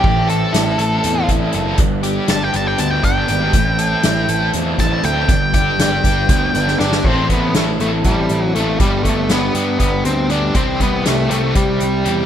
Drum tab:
CC |x-------------|--------------|--------------|--------------|
HH |--x-x-x-x-x-x-|x-x-x-x-x-x-x-|x-x-x-x-x-x-x-|x-x-x-x-x-x---|
SD |----o-o-------|--o-o---------|----o---o-o---|----o-o---oooo|
BD |o---------o---|o---------o---|o---------o---|o-o---o-o-----|

CC |x-------------|--------------|--------------|
HH |--x-x-x-x-x-x-|x-x-x-x-x-x-x-|x-x-x-x-x-x-x-|
SD |----o---------|----o-----o---|----o---------|
BD |o-o-----o-----|o-o-----o-----|o-o-----o-----|